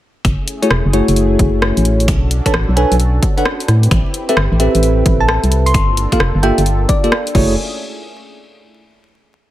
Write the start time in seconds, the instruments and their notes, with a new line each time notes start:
0.25 fm bass F#1, analog synth pad A3 C#4 E4 G#4, finger snap, kick, closed hi-hat
0.48 closed hi-hat
0.62 tine electric piano A3 E4 F#4 G#4 C#5, closed hi-hat
0.71 fm bass E1, cross-stick
0.85 fm bass F#1
0.93 tine electric piano A3 E4 F#4 G#4 C#5, closed hi-hat
1.08 fm bass F#1, closed hi-hat
1.16 closed hi-hat
1.39 fm bass F#1, kick, closed hi-hat
1.62 cross-stick
1.77 fm bass A1, closed hi-hat
1.85 closed hi-hat
2.00 closed hi-hat
2.08 fm bass B1, analog synth pad D4 F#4 A4, finger snap, kick, closed hi-hat
2.31 closed hi-hat
2.46 tine electric piano D4 A4 B4 C#5 A5, finger snap, kick, closed hi-hat
2.54 fm bass A1, cross-stick
2.69 fm bass B1
2.77 tine electric piano D4 A4 B4 C#5 G#5, closed hi-hat
2.92 fm bass B1, closed hi-hat
3.00 closed hi-hat
3.23 kick, closed hi-hat
3.37 tine electric piano D4 A4 B4 C#5 F#5, closed hi-hat
3.45 cross-stick
3.60 closed hi-hat
3.68 fm bass A2, analog synth pad C4 E4 G4 B4, cross-stick, closed hi-hat
3.83 closed hi-hat
3.91 fm bass A1, finger snap, kick, closed hi-hat
4.14 closed hi-hat
4.29 tine electric piano C4 G4 A4 B4 E5, closed hi-hat
4.37 fm bass G1, cross-stick
4.52 fm bass A1
4.60 tine electric piano C4 G4 A4 B4 E5, closed hi-hat
4.75 fm bass A1, closed hi-hat
4.83 closed hi-hat
5.06 fm bass A1, kick, closed hi-hat
5.20 synth pluck A5
5.28 synth pluck A5, cross-stick
5.43 fm bass C2, closed hi-hat
5.52 closed hi-hat
5.66 synth pluck C6, closed hi-hat
5.74 fm bass G1, analog synth pad A#3 D4 F4 A4, finger snap, kick, closed hi-hat
5.97 closed hi-hat
6.12 tine electric piano A#3 F4 G4 A4 F5, finger snap, kick, closed hi-hat
6.20 fm bass F1, cross-stick
6.35 fm bass G1
6.43 tine electric piano A#3 F4 G4 A4 E5, synth pluck G5, closed hi-hat
6.58 fm bass G1, closed hi-hat
6.66 closed hi-hat
6.89 synth pluck D5, kick, closed hi-hat
7.04 tine electric piano A#3 F4 G4 A4 D5, closed hi-hat
7.12 cross-stick
7.27 closed hi-hat
7.35 fm bass F#1, tine electric piano A3 E4 F#4 G#4 C#5, analog synth pad A3 C#4 E4 G#4, kick, crash